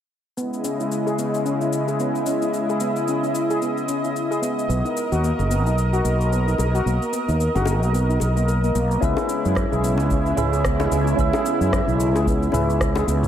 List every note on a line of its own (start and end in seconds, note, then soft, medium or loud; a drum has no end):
0.37 4.65 C#3 medium
0.37 4.66 G#3 medium
0.37 0.52 B3 medium
0.37 4.66 E4 medium
0.37 8.98 D#5 medium
0.37 shaker soft
0.53 shaker soft
0.64 0.73 C#4 medium
0.64 shaker medium
0.80 0.86 E4 medium
0.80 shaker soft
0.92 shaker soft
1.07 1.17 G#4 medium
1.07 shaker soft
1.18 1.33 B3 medium
1.18 shaker medium
1.34 shaker soft
1.46 1.54 C#4 medium
1.46 shaker soft
1.61 1.67 E4 medium
1.61 shaker soft
1.73 shaker medium
1.88 1.98 G#4 medium
1.88 shaker soft
2.00 2.14 B3 medium
2.00 shaker soft
2.15 shaker soft
2.26 2.35 C#4 medium
2.26 shaker medium
2.42 2.49 E4 medium
2.42 shaker soft
2.54 shaker soft
2.69 2.80 G#4 medium
2.69 shaker soft
2.80 2.96 B3 medium
2.80 shaker medium
2.96 shaker soft
3.08 3.16 C#4 medium
3.08 shaker soft
3.23 3.30 E4 medium
3.23 shaker soft
3.35 shaker medium
3.50 3.61 G#4 medium
3.50 shaker soft
3.62 3.77 B3 medium
3.62 shaker soft
3.77 shaker soft
3.88 3.97 C#4 medium
3.88 shaker medium
4.04 4.10 E4 medium
4.04 shaker soft
4.16 shaker soft
4.31 4.41 G#4 medium
4.31 shaker soft
4.42 4.57 B3 medium
4.42 shaker medium
4.59 shaker soft
4.69 4.81 B1 medium
4.69 4.78 B3 medium
4.69 8.98 A#4 medium
4.69 shaker soft
4.85 4.91 D#4 medium
4.85 shaker soft
4.97 shaker medium
5.12 5.31 D#2 medium
5.12 5.23 F#4 medium
5.12 shaker soft
5.24 5.39 A#3 medium
5.24 shaker soft
5.39 5.66 F#1 medium
5.39 high bongo medium
5.39 shaker soft
5.51 5.59 B3 medium
5.51 shaker medium
5.66 6.00 B1 medium
5.66 5.73 D#4 medium
5.66 shaker soft
5.78 shaker soft
5.93 6.04 F#4 medium
5.93 shaker soft
6.04 6.54 B1 medium
6.04 6.20 A#3 medium
6.04 shaker medium
6.21 shaker soft
6.32 6.40 B3 medium
6.32 shaker soft
6.48 6.54 D#4 medium
6.48 shaker soft
6.58 6.80 B1 medium
6.58 high bongo medium
6.58 shaker medium
6.75 6.85 F#4 medium
6.75 shaker soft
6.86 6.97 B1 medium
6.86 7.01 A#3 medium
6.86 shaker soft
7.02 shaker soft
7.13 7.21 B3 medium
7.13 shaker medium
7.28 7.47 D#2 medium
7.28 7.35 D#4 medium
7.28 shaker soft
7.40 shaker soft
7.55 7.83 F#1 medium
7.55 7.66 F#4 medium
7.55 high bongo medium
7.55 shaker soft
7.66 7.82 A#3 medium
7.66 high bongo medium
7.66 shaker medium
7.83 8.16 B1 medium
7.83 shaker soft
7.94 8.03 B3 medium
7.94 shaker soft
8.09 8.16 D#4 medium
8.09 shaker soft
8.20 8.70 B1 medium
8.20 high bongo medium
8.20 shaker medium
8.36 8.47 A#3 medium
8.36 shaker soft
8.48 8.62 A#4 medium
8.48 shaker soft
8.64 8.74 A#3 medium
8.64 shaker soft
8.75 8.96 B1 medium
8.75 8.89 A#3 medium
8.75 shaker medium
8.91 9.01 B3 medium
8.91 shaker soft
9.00 9.14 C#2 medium
9.00 13.28 C#3 medium
9.00 13.28 G#3 medium
9.00 9.17 B3 medium
9.00 10.34 C#4 medium
9.00 10.34 E4 medium
9.00 13.28 E4 medium
9.00 10.35 G#4 medium
9.00 10.35 B4 medium
9.00 kick medium
9.00 shaker soft
9.05 10.36 E5 medium
9.17 high bongo medium
9.17 shaker soft
9.29 9.38 C#4 medium
9.29 shaker medium
9.45 9.64 F#2 medium
9.45 9.51 E4 medium
9.45 shaker soft
9.55 kick medium
9.55 cross-stick medium
9.55 high bongo medium
9.55 shaker soft
9.72 9.99 B1 medium
9.72 9.82 G#4 medium
9.72 shaker soft
9.84 9.98 B3 medium
9.84 shaker medium
9.98 10.33 C#2 medium
9.98 high bongo medium
9.98 shaker soft
10.10 10.19 C#4 medium
10.10 kick medium
10.10 shaker soft
10.25 10.32 E4 medium
10.25 shaker soft
10.36 10.87 C#2 medium
10.36 10.62 C#4 medium
10.36 10.62 E4 medium
10.36 10.62 G#4 medium
10.36 10.62 B4 medium
10.36 10.63 E5 medium
10.36 mid tom medium
10.36 high bongo medium
10.36 shaker medium
10.52 10.63 G#4 medium
10.52 shaker soft
10.64 10.79 B3 medium
10.64 kick loud
10.64 cross-stick loud
10.64 shaker soft
10.80 high bongo loud
10.80 shaker soft
10.91 11.12 C#2 medium
10.91 11.00 C#4 medium
10.91 shaker medium
11.07 11.13 E4 medium
11.07 shaker soft
11.16 11.30 C#2 medium
11.16 12.50 C#4 medium
11.16 12.50 E4 medium
11.16 12.51 G#4 medium
11.16 12.51 B4 medium
11.16 kick loud
11.16 shaker soft
11.20 12.52 E5 medium
11.33 11.44 G#4 medium
11.33 high bongo loud
11.33 shaker soft
11.46 11.60 B3 medium
11.46 shaker medium
11.60 11.80 F#2 medium
11.60 shaker soft
11.72 11.81 C#4 medium
11.72 kick loud
11.72 cross-stick loud
11.72 high bongo medium
11.72 shaker soft
11.87 12.15 B1 medium
11.87 11.94 E4 medium
11.87 shaker soft
12.00 shaker medium
12.14 12.49 C#2 medium
12.14 12.25 G#4 medium
12.14 high bongo medium
12.14 shaker soft
12.26 12.41 B3 medium
12.26 kick loud
12.26 shaker soft
12.43 shaker soft
12.52 13.02 C#2 medium
12.52 12.77 C#4 medium
12.52 12.62 C#4 medium
12.52 12.78 E4 medium
12.52 12.78 G#4 medium
12.52 12.78 B4 medium
12.52 12.79 E5 medium
12.52 mid tom medium
12.52 high bongo medium
12.52 shaker medium
12.69 12.75 E4 medium
12.69 shaker soft
12.81 kick loud
12.81 cross-stick loud
12.81 shaker soft
12.95 13.06 G#4 medium
12.95 high bongo loud
12.95 shaker soft
13.07 13.28 C#2 medium
13.07 13.22 B3 medium
13.07 shaker medium
13.23 mid tom medium
13.23 shaker soft